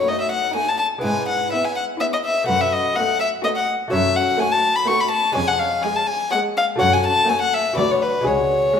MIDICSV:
0, 0, Header, 1, 7, 480
1, 0, Start_track
1, 0, Tempo, 480000
1, 1042, Time_signature, 3, 2, 24, 8
1, 7279, Tempo, 493016
1, 8759, End_track
2, 0, Start_track
2, 0, Title_t, "Violin"
2, 0, Program_c, 0, 40
2, 78, Note_on_c, 0, 75, 56
2, 199, Note_off_c, 0, 75, 0
2, 205, Note_on_c, 0, 76, 52
2, 310, Note_off_c, 0, 76, 0
2, 316, Note_on_c, 0, 78, 56
2, 548, Note_off_c, 0, 78, 0
2, 554, Note_on_c, 0, 80, 60
2, 685, Note_on_c, 0, 81, 55
2, 700, Note_off_c, 0, 80, 0
2, 779, Note_off_c, 0, 81, 0
2, 785, Note_on_c, 0, 81, 58
2, 865, Note_off_c, 0, 81, 0
2, 1030, Note_on_c, 0, 80, 58
2, 1271, Note_off_c, 0, 80, 0
2, 1283, Note_on_c, 0, 78, 59
2, 1517, Note_off_c, 0, 78, 0
2, 1524, Note_on_c, 0, 76, 61
2, 1647, Note_on_c, 0, 80, 57
2, 1662, Note_off_c, 0, 76, 0
2, 1756, Note_off_c, 0, 80, 0
2, 1762, Note_on_c, 0, 78, 54
2, 1842, Note_off_c, 0, 78, 0
2, 2002, Note_on_c, 0, 76, 62
2, 2050, Note_off_c, 0, 76, 0
2, 2131, Note_on_c, 0, 75, 52
2, 2178, Note_off_c, 0, 75, 0
2, 2249, Note_on_c, 0, 76, 61
2, 2475, Note_off_c, 0, 76, 0
2, 2481, Note_on_c, 0, 78, 68
2, 2611, Note_on_c, 0, 76, 57
2, 2626, Note_off_c, 0, 78, 0
2, 2728, Note_on_c, 0, 75, 60
2, 2743, Note_off_c, 0, 76, 0
2, 2955, Note_on_c, 0, 78, 68
2, 2970, Note_off_c, 0, 75, 0
2, 3197, Note_off_c, 0, 78, 0
2, 3203, Note_on_c, 0, 76, 60
2, 3283, Note_off_c, 0, 76, 0
2, 3441, Note_on_c, 0, 75, 62
2, 3490, Note_off_c, 0, 75, 0
2, 3565, Note_on_c, 0, 78, 55
2, 3682, Note_off_c, 0, 78, 0
2, 3920, Note_on_c, 0, 76, 64
2, 4163, Note_on_c, 0, 78, 57
2, 4178, Note_off_c, 0, 76, 0
2, 4397, Note_on_c, 0, 80, 68
2, 4412, Note_off_c, 0, 78, 0
2, 4514, Note_on_c, 0, 81, 69
2, 4529, Note_off_c, 0, 80, 0
2, 4755, Note_on_c, 0, 83, 63
2, 4770, Note_off_c, 0, 81, 0
2, 4874, Note_on_c, 0, 85, 74
2, 4889, Note_off_c, 0, 83, 0
2, 5004, Note_on_c, 0, 83, 65
2, 5019, Note_off_c, 0, 85, 0
2, 5102, Note_off_c, 0, 83, 0
2, 5108, Note_on_c, 0, 81, 68
2, 5347, Note_off_c, 0, 81, 0
2, 5353, Note_on_c, 0, 80, 80
2, 5477, Note_on_c, 0, 78, 69
2, 5492, Note_off_c, 0, 80, 0
2, 5595, Note_on_c, 0, 77, 67
2, 5610, Note_off_c, 0, 78, 0
2, 5828, Note_on_c, 0, 80, 73
2, 5843, Note_off_c, 0, 77, 0
2, 5958, Note_on_c, 0, 81, 67
2, 5973, Note_off_c, 0, 80, 0
2, 6068, Note_on_c, 0, 80, 70
2, 6083, Note_off_c, 0, 81, 0
2, 6308, Note_off_c, 0, 80, 0
2, 6314, Note_on_c, 0, 78, 68
2, 6394, Note_off_c, 0, 78, 0
2, 6569, Note_on_c, 0, 77, 70
2, 6649, Note_off_c, 0, 77, 0
2, 6797, Note_on_c, 0, 78, 71
2, 6929, Note_on_c, 0, 80, 61
2, 6944, Note_off_c, 0, 78, 0
2, 7045, Note_off_c, 0, 80, 0
2, 7060, Note_on_c, 0, 81, 73
2, 7290, Note_on_c, 0, 80, 69
2, 7305, Note_off_c, 0, 81, 0
2, 7403, Note_off_c, 0, 80, 0
2, 7409, Note_on_c, 0, 78, 64
2, 7537, Note_on_c, 0, 76, 66
2, 7551, Note_off_c, 0, 78, 0
2, 7757, Note_off_c, 0, 76, 0
2, 7763, Note_on_c, 0, 74, 68
2, 7893, Note_on_c, 0, 73, 59
2, 7907, Note_off_c, 0, 74, 0
2, 8004, Note_on_c, 0, 71, 62
2, 8018, Note_off_c, 0, 73, 0
2, 8249, Note_on_c, 0, 73, 57
2, 8264, Note_off_c, 0, 71, 0
2, 8759, Note_off_c, 0, 73, 0
2, 8759, End_track
3, 0, Start_track
3, 0, Title_t, "Violin section"
3, 0, Program_c, 1, 48
3, 83, Note_on_c, 1, 66, 43
3, 439, Note_off_c, 1, 66, 0
3, 557, Note_on_c, 1, 66, 41
3, 917, Note_off_c, 1, 66, 0
3, 1521, Note_on_c, 1, 71, 46
3, 1878, Note_off_c, 1, 71, 0
3, 1999, Note_on_c, 1, 71, 45
3, 2359, Note_off_c, 1, 71, 0
3, 2966, Note_on_c, 1, 71, 47
3, 3323, Note_off_c, 1, 71, 0
3, 3446, Note_on_c, 1, 71, 47
3, 3802, Note_off_c, 1, 71, 0
3, 4395, Note_on_c, 1, 73, 54
3, 4754, Note_off_c, 1, 73, 0
3, 4873, Note_on_c, 1, 73, 48
3, 5235, Note_off_c, 1, 73, 0
3, 5836, Note_on_c, 1, 73, 52
3, 6196, Note_off_c, 1, 73, 0
3, 6317, Note_on_c, 1, 73, 52
3, 6676, Note_off_c, 1, 73, 0
3, 7275, Note_on_c, 1, 73, 52
3, 7629, Note_off_c, 1, 73, 0
3, 7747, Note_on_c, 1, 71, 50
3, 8107, Note_off_c, 1, 71, 0
3, 8714, Note_on_c, 1, 68, 48
3, 8759, Note_off_c, 1, 68, 0
3, 8759, End_track
4, 0, Start_track
4, 0, Title_t, "Violin section"
4, 0, Program_c, 2, 48
4, 75, Note_on_c, 2, 63, 41
4, 435, Note_off_c, 2, 63, 0
4, 554, Note_on_c, 2, 63, 45
4, 915, Note_off_c, 2, 63, 0
4, 1520, Note_on_c, 2, 64, 43
4, 1878, Note_off_c, 2, 64, 0
4, 2000, Note_on_c, 2, 64, 48
4, 2360, Note_off_c, 2, 64, 0
4, 2969, Note_on_c, 2, 66, 47
4, 3324, Note_off_c, 2, 66, 0
4, 3445, Note_on_c, 2, 66, 54
4, 3802, Note_off_c, 2, 66, 0
4, 4412, Note_on_c, 2, 66, 52
4, 4763, Note_off_c, 2, 66, 0
4, 4896, Note_on_c, 2, 66, 56
4, 5247, Note_off_c, 2, 66, 0
4, 5844, Note_on_c, 2, 68, 53
4, 6200, Note_off_c, 2, 68, 0
4, 6326, Note_on_c, 2, 68, 60
4, 6681, Note_off_c, 2, 68, 0
4, 7285, Note_on_c, 2, 66, 47
4, 7634, Note_off_c, 2, 66, 0
4, 7761, Note_on_c, 2, 66, 55
4, 8114, Note_off_c, 2, 66, 0
4, 8725, Note_on_c, 2, 66, 47
4, 8759, Note_off_c, 2, 66, 0
4, 8759, End_track
5, 0, Start_track
5, 0, Title_t, "Lute"
5, 0, Program_c, 3, 24
5, 0, Note_on_c, 3, 57, 33
5, 0, Note_on_c, 3, 63, 31
5, 0, Note_on_c, 3, 66, 31
5, 977, Note_off_c, 3, 57, 0
5, 983, Note_on_c, 3, 56, 39
5, 985, Note_off_c, 3, 63, 0
5, 993, Note_off_c, 3, 66, 0
5, 997, Note_on_c, 3, 59, 35
5, 1013, Note_on_c, 3, 64, 31
5, 1030, Note_on_c, 3, 71, 32
5, 1043, Note_on_c, 3, 44, 37
5, 1411, Note_off_c, 3, 44, 0
5, 2414, Note_off_c, 3, 56, 0
5, 2421, Note_off_c, 3, 59, 0
5, 2429, Note_off_c, 3, 64, 0
5, 2438, Note_off_c, 3, 71, 0
5, 2440, Note_on_c, 3, 57, 35
5, 2454, Note_on_c, 3, 66, 33
5, 2470, Note_on_c, 3, 71, 33
5, 2486, Note_on_c, 3, 42, 37
5, 2854, Note_off_c, 3, 42, 0
5, 3863, Note_off_c, 3, 57, 0
5, 3870, Note_off_c, 3, 66, 0
5, 3878, Note_off_c, 3, 71, 0
5, 3879, Note_on_c, 3, 57, 38
5, 3896, Note_on_c, 3, 66, 35
5, 3910, Note_on_c, 3, 73, 36
5, 3924, Note_on_c, 3, 42, 40
5, 4291, Note_off_c, 3, 42, 0
5, 5299, Note_off_c, 3, 57, 0
5, 5308, Note_off_c, 3, 66, 0
5, 5314, Note_off_c, 3, 73, 0
5, 5319, Note_on_c, 3, 56, 39
5, 5333, Note_on_c, 3, 68, 38
5, 5348, Note_on_c, 3, 73, 38
5, 5362, Note_on_c, 3, 41, 45
5, 5727, Note_off_c, 3, 41, 0
5, 6739, Note_off_c, 3, 56, 0
5, 6746, Note_off_c, 3, 68, 0
5, 6754, Note_off_c, 3, 73, 0
5, 6757, Note_on_c, 3, 57, 40
5, 6772, Note_on_c, 3, 66, 40
5, 6788, Note_on_c, 3, 73, 41
5, 6800, Note_on_c, 3, 42, 45
5, 7169, Note_off_c, 3, 42, 0
5, 7703, Note_off_c, 3, 57, 0
5, 7709, Note_off_c, 3, 66, 0
5, 7719, Note_off_c, 3, 73, 0
5, 7721, Note_on_c, 3, 66, 40
5, 7735, Note_on_c, 3, 71, 37
5, 7753, Note_on_c, 3, 38, 42
5, 8123, Note_off_c, 3, 38, 0
5, 8185, Note_on_c, 3, 56, 36
5, 8190, Note_off_c, 3, 66, 0
5, 8202, Note_on_c, 3, 66, 36
5, 8211, Note_off_c, 3, 71, 0
5, 8217, Note_on_c, 3, 68, 38
5, 8759, Note_off_c, 3, 56, 0
5, 8759, Note_off_c, 3, 66, 0
5, 8759, Note_off_c, 3, 68, 0
5, 8759, End_track
6, 0, Start_track
6, 0, Title_t, "Viola section"
6, 0, Program_c, 4, 48
6, 74, Note_on_c, 4, 57, 40
6, 434, Note_off_c, 4, 57, 0
6, 555, Note_on_c, 4, 57, 39
6, 916, Note_off_c, 4, 57, 0
6, 1513, Note_on_c, 4, 59, 43
6, 1874, Note_off_c, 4, 59, 0
6, 2001, Note_on_c, 4, 59, 44
6, 2360, Note_off_c, 4, 59, 0
6, 2964, Note_on_c, 4, 57, 47
6, 3322, Note_off_c, 4, 57, 0
6, 3440, Note_on_c, 4, 57, 47
6, 3800, Note_off_c, 4, 57, 0
6, 4399, Note_on_c, 4, 57, 50
6, 4756, Note_off_c, 4, 57, 0
6, 4879, Note_on_c, 4, 57, 47
6, 5238, Note_off_c, 4, 57, 0
6, 5839, Note_on_c, 4, 56, 52
6, 6197, Note_off_c, 4, 56, 0
6, 6327, Note_on_c, 4, 56, 51
6, 6681, Note_off_c, 4, 56, 0
6, 7277, Note_on_c, 4, 57, 51
6, 7630, Note_off_c, 4, 57, 0
6, 7751, Note_on_c, 4, 54, 49
6, 8109, Note_off_c, 4, 54, 0
6, 8713, Note_on_c, 4, 56, 48
6, 8759, Note_off_c, 4, 56, 0
6, 8759, End_track
7, 0, Start_track
7, 0, Title_t, "Cello section"
7, 0, Program_c, 5, 48
7, 1043, Note_on_c, 5, 44, 55
7, 1422, Note_off_c, 5, 44, 0
7, 2487, Note_on_c, 5, 42, 62
7, 2866, Note_off_c, 5, 42, 0
7, 3924, Note_on_c, 5, 42, 63
7, 4303, Note_off_c, 5, 42, 0
7, 5363, Note_on_c, 5, 41, 70
7, 5740, Note_off_c, 5, 41, 0
7, 6800, Note_on_c, 5, 42, 64
7, 7180, Note_off_c, 5, 42, 0
7, 7747, Note_on_c, 5, 38, 59
7, 8130, Note_off_c, 5, 38, 0
7, 8227, Note_on_c, 5, 37, 60
7, 8615, Note_off_c, 5, 37, 0
7, 8759, End_track
0, 0, End_of_file